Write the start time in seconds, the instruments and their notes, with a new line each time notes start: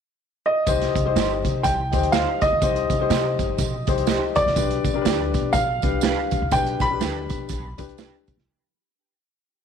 0.46 grand piano D#5
0.67 upright bass C2, grand piano D#4 G4 C5, kick, closed hi-hat, tambourine
0.81 snare, closed hi-hat
0.96 upright bass C2, kick, closed hi-hat, tambourine
1.05 grand piano D#4 G4 C5
1.16 upright bass G1, clean electric guitar D#4 G4 C5, snare, closed hi-hat, tambourine
1.45 upright bass C3, kick, closed hi-hat, tambourine
1.63 upright bass C2, grand piano G5, kick, closed hi-hat, tambourine
1.92 upright bass D2, grand piano D#4 G4 C5, kick, closed hi-hat, tambourine
2.03 closed hi-hat
2.12 clean electric guitar D#4 G4 C5, grand piano F5, snare, closed hi-hat, tambourine
2.41 upright bass C2, grand piano D#5, kick, closed hi-hat, tambourine
2.53 upright bass C#2
2.61 upright bass C2, grand piano D#4 G4 C5, kick, closed hi-hat, tambourine
2.76 closed hi-hat
2.90 upright bass C2, kick, closed hi-hat, tambourine
3.00 grand piano D#4 G4 C5
3.10 upright bass C3, clean electric guitar D#4 G4 C5, snare, closed hi-hat, tambourine
3.39 upright bass G1, kick, closed hi-hat, tambourine
3.58 upright bass B1, kick, closed hi-hat, tambourine
3.87 upright bass C2, grand piano D#4 G4 C5, kick, closed hi-hat, tambourine
3.98 closed hi-hat
4.07 clean electric guitar D#4 G4 C5, snare, closed hi-hat, tambourine
4.35 upright bass B1, grand piano D5, kick, closed hi-hat, tambourine
4.46 upright bass C2, snare
4.55 upright bass B1, grand piano D4 G4 B4, kick, closed hi-hat, tambourine
4.71 closed hi-hat
4.85 upright bass B1, kick, closed hi-hat, tambourine
4.94 grand piano D4 G4 A#4
5.02 upright bass D2, clean electric guitar D4, grand piano B4, closed hi-hat, tambourine
5.06 clean electric guitar G4 B4, snare
5.34 upright bass B2, kick, closed hi-hat, tambourine
5.53 upright bass B1, grand piano F5, kick, closed hi-hat, tambourine
5.82 upright bass C2, grand piano D4 G4 B4, kick, closed hi-hat, tambourine
6.01 clean electric guitar D4 G4 B4, snare, closed hi-hat, tambourine
6.31 upright bass B1, kick, closed hi-hat, tambourine
6.42 upright bass C2
6.51 upright bass B1, grand piano D4 G4 B4 G5, kick, closed hi-hat, tambourine
6.66 closed hi-hat
6.80 upright bass B1, grand piano B5, kick, closed hi-hat, tambourine
6.91 grand piano D4 G4 B4
7.00 upright bass D2, clean electric guitar D4 G4 B4, snare, closed hi-hat, tambourine
7.30 upright bass B2, kick, closed hi-hat, tambourine
7.49 upright bass B1, kick, closed hi-hat, tambourine
7.78 upright bass C2, grand piano D4 G4 B4, kick, closed hi-hat, tambourine
7.89 closed hi-hat
7.98 clean electric guitar D4 G4 B4, snare, closed hi-hat, tambourine
8.28 upright bass B1, kick, closed hi-hat, tambourine
8.37 upright bass C2, snare